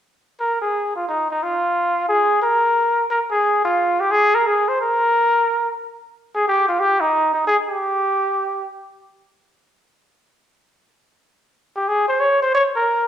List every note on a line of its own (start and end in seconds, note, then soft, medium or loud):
0.40 0.59 A#4 medium
0.62 0.92 G#4 medium
0.96 1.06 F4 medium
1.08 1.27 D#4 medium
1.31 1.44 D#4 medium
1.43 2.08 F4 medium
2.09 2.39 G#4 medium
2.42 3.05 A#4 medium
3.10 3.19 A#4 medium
3.31 3.62 G#4 medium
3.65 4.02 F4 medium
4.00 4.13 G4 medium
4.11 4.36 G#4 loud
4.35 4.48 A#4 medium
4.47 4.70 G#4 medium
4.68 4.79 C5 medium
4.81 5.76 A#4 medium
6.35 6.46 G#4 medium
6.48 6.67 G4 medium
6.68 6.81 F4 medium
6.80 7.02 G4 medium
7.01 7.33 D#4 medium
7.34 7.45 D#4 medium
7.47 7.57 G#4 medium
7.69 8.66 G4 medium
11.76 11.90 G4 medium
11.88 12.08 G#4 medium
12.08 12.21 C5 medium
12.20 12.40 C#5 loud
12.42 12.52 C5 medium
12.54 12.64 C#5 medium
12.75 13.06 A#4 medium